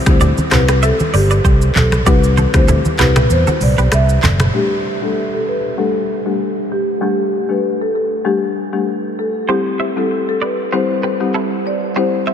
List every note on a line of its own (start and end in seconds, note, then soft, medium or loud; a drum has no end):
0.06 0.31 D2 medium
0.06 0.48 G3 medium
0.06 0.48 C4 medium
0.06 0.49 E4 medium
0.06 0.49 G4 medium
0.06 0.20 C5 medium
0.06 finger snap medium
0.06 kick loud
0.06 cross-stick medium
0.06 shaker soft
0.21 0.35 G4 medium
0.21 0.34 D5 medium
0.21 low conga medium
0.21 shaker medium
0.38 high conga medium
0.38 shaker medium
0.51 0.90 C2 loud
0.51 0.80 G3 medium
0.51 0.80 C4 medium
0.51 0.81 E4 medium
0.51 0.81 G4 medium
0.51 0.66 A4 medium
0.51 0.67 B4 medium
0.51 0.65 C5 medium
0.51 finger snap medium
0.51 cross-stick medium
0.51 clap medium
0.51 low conga medium
0.51 shaker medium
0.69 0.80 G4 medium
0.69 0.80 B4 medium
0.69 finger snap medium
0.69 cross-stick medium
0.69 shaker medium
0.83 0.98 A4 medium
0.83 0.96 C5 medium
0.83 0.96 E5 loud
0.83 shaker medium
1.00 high conga medium
1.00 shaker soft
1.14 1.38 G1 medium
1.14 1.29 G4 medium
1.14 1.27 B4 medium
1.14 1.27 D5 medium
1.14 open hi-hat medium
1.31 1.42 B4 medium
1.31 1.41 D5 medium
1.31 shaker medium
1.45 1.69 C2 medium
1.45 1.69 G4 medium
1.45 1.69 C5 medium
1.45 kick medium
1.45 shaker medium
1.62 shaker medium
1.75 2.00 B1 loud
1.75 1.91 A4 medium
1.75 clap medium
1.75 high conga medium
1.75 low conga medium
1.92 finger snap medium
1.92 cross-stick medium
1.92 mid tom loud
1.92 shaker medium
2.06 2.45 C2 loud
2.06 2.50 G3 loud
2.06 2.50 C4 medium
2.06 2.50 E4 medium
2.06 2.51 G4 loud
2.06 2.20 G4 medium
2.06 2.22 B4 loud
2.06 2.20 D5 loud
2.06 kick loud
2.06 low conga medium
2.06 shaker medium
2.24 shaker medium
2.37 2.51 A4 medium
2.37 2.51 C5 medium
2.37 high conga medium
2.37 shaker soft
2.54 2.79 D2 loud
2.54 2.96 G3 medium
2.54 2.96 C4 medium
2.54 2.96 E4 medium
2.54 2.96 G4 medium
2.54 2.67 C5 medium
2.54 finger snap medium
2.54 kick loud
2.54 cross-stick medium
2.54 shaker medium
2.68 2.82 E4 medium
2.68 2.82 A4 medium
2.68 low conga medium
2.68 shaker medium
2.85 high conga medium
2.85 shaker medium
2.99 3.24 C2 medium
2.99 3.28 G3 medium
2.99 3.28 C4 medium
2.99 3.28 E4 medium
2.99 3.28 G4 medium
2.99 3.13 G4 medium
2.99 3.12 B4 medium
2.99 3.15 B4 medium
2.99 finger snap medium
2.99 cross-stick medium
2.99 clap medium
2.99 low conga medium
2.99 shaker medium
3.16 3.28 E4 medium
3.16 3.27 G4 medium
3.16 finger snap medium
3.16 cross-stick medium
3.16 mid tom loud
3.16 shaker medium
3.30 3.44 E2 loud
3.30 3.46 C5 medium
3.30 shaker medium
3.47 3.59 F#4 medium
3.47 3.58 A4 medium
3.47 high conga medium
3.47 shaker soft
3.61 3.75 C2 medium
3.61 3.77 D5 medium
3.61 mid tom medium
3.61 open hi-hat medium
3.61 shaker medium
3.78 3.89 B1 medium
3.78 3.89 G4 medium
3.78 3.89 B4 medium
3.78 shaker medium
3.92 4.17 C2 medium
3.92 4.38 E5 medium
3.92 finger snap medium
3.92 cross-stick medium
3.92 shaker medium
4.09 shaker medium
4.23 4.48 F#1 medium
4.23 4.37 A4 medium
4.23 4.36 C5 medium
4.23 clap loud
4.23 high conga medium
4.23 low conga medium
4.23 shaker soft
4.40 finger snap medium
4.40 cross-stick medium
4.40 mid tom loud
4.40 shaker medium
4.54 4.77 G3 medium
4.54 4.77 A3 medium
4.54 4.77 D4 medium
4.54 4.77 G4 loud
4.54 4.69 G4 medium
5.02 5.23 G3 medium
5.02 5.24 A3 medium
5.02 5.24 D4 medium
5.02 5.24 G4 medium
5.02 5.15 A4 medium
5.34 5.46 A4 medium
5.48 5.62 B4 medium
5.77 6.01 G3 medium
5.77 6.01 A3 medium
5.77 6.01 D4 medium
5.77 6.01 G4 loud
5.77 6.24 A4 medium
6.25 6.47 G3 medium
6.25 6.47 A3 medium
6.25 6.47 D4 medium
6.25 6.47 G4 medium
6.72 6.86 G4 medium
7.01 7.24 G3 medium
7.01 7.25 A3 medium
7.01 7.25 D4 medium
7.01 7.25 G4 medium
7.01 7.17 G4 loud
7.49 7.71 G3 medium
7.49 7.71 A3 medium
7.49 7.71 D4 medium
7.49 7.71 G4 medium
7.49 7.62 B4 medium
7.81 7.93 A4 medium
7.95 8.09 A4 medium
8.25 8.48 G3 medium
8.25 8.48 A3 medium
8.25 8.48 D4 medium
8.25 8.48 G4 loud
8.25 8.71 G4 medium
8.73 8.94 G3 medium
8.73 8.95 A3 medium
8.73 8.95 D4 medium
8.73 8.95 G4 medium
9.19 9.33 A4 medium
9.48 9.72 G3 medium
9.48 9.72 C4 medium
9.48 9.72 E4 medium
9.48 9.72 G4 loud
9.48 9.62 G4 medium
9.48 9.64 G4 loud
9.48 9.62 C5 medium
9.80 9.93 C5 medium
9.80 9.93 E5 medium
9.96 10.18 G3 medium
9.96 10.18 C4 medium
9.96 10.18 E4 medium
9.96 10.19 G4 medium
9.96 10.09 A4 medium
10.29 10.40 A4 medium
10.42 10.55 B4 medium
10.42 10.57 B4 medium
10.42 10.55 D5 medium
10.72 10.96 G3 medium
10.72 10.96 C4 medium
10.72 10.96 E4 medium
10.72 10.96 G4 loud
10.72 10.86 G4 medium
10.72 10.86 C5 medium
10.72 11.18 C5 medium
11.03 11.17 G4 medium
11.03 11.17 B4 medium
11.20 11.42 G3 medium
11.20 11.42 C4 medium
11.20 11.42 E4 medium
11.20 11.42 G4 medium
11.34 11.59 E4 medium
11.34 11.58 A4 medium
11.67 11.81 D5 medium
11.96 12.19 G3 medium
11.96 12.20 C4 medium
11.96 12.20 E4 medium
11.96 12.20 G4 medium
11.96 12.10 G4 medium
11.96 12.09 C5 medium
11.96 12.12 C5 medium
12.27 12.34 C5 medium
12.27 12.34 E5 medium